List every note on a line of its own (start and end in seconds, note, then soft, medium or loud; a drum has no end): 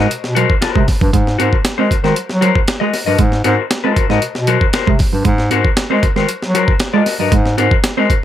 0.00 0.10 F#4 soft
0.10 0.16 B2 medium
0.10 closed hi-hat medium
0.24 0.47 B2 loud
0.24 snare soft
0.35 0.45 F#3 medium
0.35 0.52 F#4 medium
0.35 0.53 A#4 medium
0.35 0.53 C5 loud
0.35 closed hi-hat medium
0.50 kick medium
0.61 0.68 C3 soft
0.61 0.82 F#4 medium
0.61 0.82 A#4 medium
0.61 0.83 C5 medium
0.61 snare loud
0.61 closed hi-hat medium
0.76 0.86 C3 medium
0.76 0.83 G#3 medium
0.76 kick loud
0.88 muted clean electric guitar stroke soft
0.88 kick medium
0.88 snare soft
0.88 open hi-hat medium
1.01 1.12 G2 loud
1.01 1.09 F#3 medium
1.01 kick loud
1.13 1.36 G#2 loud
1.13 1.22 G#3 medium
1.13 kick loud
1.13 closed hi-hat medium
1.27 muted clean electric guitar stroke soft
1.27 snare soft
1.38 1.51 G#2 loud
1.38 1.48 C4 medium
1.38 1.55 F#4 medium
1.38 1.56 A#4 medium
1.38 1.56 C5 loud
1.38 closed hi-hat medium
1.53 kick medium
1.65 1.70 G#3 soft
1.65 snare loud
1.65 closed hi-hat loud
1.78 1.89 G#3 loud
1.78 1.86 C4 medium
1.78 1.94 F#4 medium
1.78 1.94 A#4 medium
1.78 1.93 C5 medium
1.91 muted clean electric guitar stroke soft
1.91 kick medium
1.91 closed hi-hat medium
2.04 2.15 D#3 loud
2.04 2.12 G#3 medium
2.04 2.16 F#4 soft
2.04 2.16 A#4 medium
2.04 2.16 C5 medium
2.04 snare soft
2.16 2.22 F#3 soft
2.16 closed hi-hat medium
2.29 2.52 F#3 loud
2.29 snare soft
2.41 2.50 F#3 medium
2.41 2.58 F#4 medium
2.41 2.59 A#4 medium
2.41 2.59 C5 medium
2.41 closed hi-hat medium
2.55 kick medium
2.68 snare loud
2.68 closed hi-hat medium
2.80 2.92 G#3 loud
2.80 2.89 G#3 medium
2.80 2.97 F#4 medium
2.80 2.97 A#4 medium
2.80 2.96 D#5 medium
2.94 muted clean electric guitar stroke soft
2.94 snare soft
2.94 open hi-hat medium
3.06 3.18 G2 medium
3.06 3.15 F#3 medium
3.06 3.19 F#4 soft
3.06 3.19 A#4 medium
3.06 3.19 D#5 medium
3.18 3.42 G#2 medium
3.18 3.27 G#3 medium
3.18 kick loud
3.18 closed hi-hat medium
3.32 muted clean electric guitar stroke soft
3.32 snare soft
3.44 3.57 G#2 loud
3.44 3.53 C4 medium
3.44 3.61 F#4 loud
3.44 3.62 A#4 loud
3.44 3.62 C5 loud
3.44 closed hi-hat medium
3.71 3.76 G#3 soft
3.71 snare loud
3.71 closed hi-hat loud
3.84 3.95 G#3 medium
3.84 3.92 C4 medium
3.84 4.05 F#4 medium
3.84 4.05 A#4 medium
3.84 4.04 C5 medium
3.96 muted clean electric guitar stroke soft
3.96 kick medium
3.96 closed hi-hat medium
4.09 4.20 G#2 loud
4.09 4.17 G#3 medium
4.09 4.23 F#4 soft
4.09 4.23 A#4 soft
4.09 4.22 D#5 medium
4.09 snare soft
4.22 4.28 B2 medium
4.22 closed hi-hat medium
4.35 4.58 B2 loud
4.35 snare soft
4.47 4.56 F#3 medium
4.47 4.64 F#4 medium
4.47 4.65 A#4 medium
4.47 4.65 C5 medium
4.47 closed hi-hat medium
4.61 kick medium
4.73 4.79 C3 soft
4.73 4.90 F#4 medium
4.73 4.90 A#4 medium
4.73 4.91 C5 medium
4.73 snare loud
4.73 closed hi-hat medium
4.87 4.98 C3 medium
4.87 4.94 G#3 medium
4.87 kick loud
4.99 muted clean electric guitar stroke soft
4.99 kick loud
4.99 snare soft
4.99 open hi-hat medium
5.13 5.24 G2 loud
5.13 5.20 F#3 medium
5.25 5.48 G#2 loud
5.25 5.33 G#3 medium
5.25 kick loud
5.25 closed hi-hat medium
5.38 snare soft
5.50 5.63 G#2 loud
5.50 5.59 C4 medium
5.50 5.68 F#4 medium
5.50 5.68 A#4 medium
5.50 5.68 C5 medium
5.50 closed hi-hat medium
5.65 kick medium
5.77 5.83 G#3 soft
5.77 snare loud
5.77 closed hi-hat loud
5.90 6.02 G#3 loud
5.90 5.98 C4 medium
5.90 6.07 F#4 medium
5.90 6.06 A#4 medium
5.90 6.06 C5 loud
6.03 muted clean electric guitar stroke soft
6.03 kick medium
6.03 closed hi-hat medium
6.16 6.27 D#3 medium
6.16 6.24 G#3 medium
6.16 6.29 F#4 soft
6.16 6.29 A#4 medium
6.16 6.28 C5 medium
6.16 snare soft
6.29 6.34 F#3 soft
6.29 closed hi-hat medium
6.42 6.65 F#3 loud
6.42 snare soft
6.54 6.63 F#3 medium
6.54 6.71 F#4 medium
6.54 6.72 A#4 medium
6.54 6.72 C5 medium
6.54 closed hi-hat medium
6.68 kick loud
6.80 snare loud
6.80 closed hi-hat medium
6.93 7.01 G#3 medium
6.93 7.05 G#3 loud
6.93 7.14 F#4 medium
6.93 7.14 A#4 medium
6.93 7.14 D#5 medium
7.06 muted clean electric guitar stroke soft
7.06 snare soft
7.06 open hi-hat medium
7.19 7.31 G2 medium
7.19 7.27 F#3 medium
7.19 7.32 F#4 medium
7.19 7.32 A#4 medium
7.19 7.31 D#5 medium
7.32 7.54 G#2 loud
7.32 7.40 G#3 medium
7.32 kick loud
7.32 closed hi-hat medium
7.45 muted clean electric guitar stroke soft
7.45 snare soft
7.57 7.70 G#2 loud
7.57 7.66 C4 medium
7.57 7.74 F#4 medium
7.57 7.75 A#4 medium
7.57 7.75 C5 loud
7.57 closed hi-hat medium
7.71 kick loud
7.84 7.90 G#3 soft
7.84 snare loud
7.84 closed hi-hat loud
7.97 8.08 G#3 loud
7.97 8.05 C4 medium
7.97 8.13 F#4 medium
7.97 8.13 A#4 medium
7.97 8.13 C5 medium
8.09 muted clean electric guitar stroke soft
8.09 kick medium
8.09 closed hi-hat medium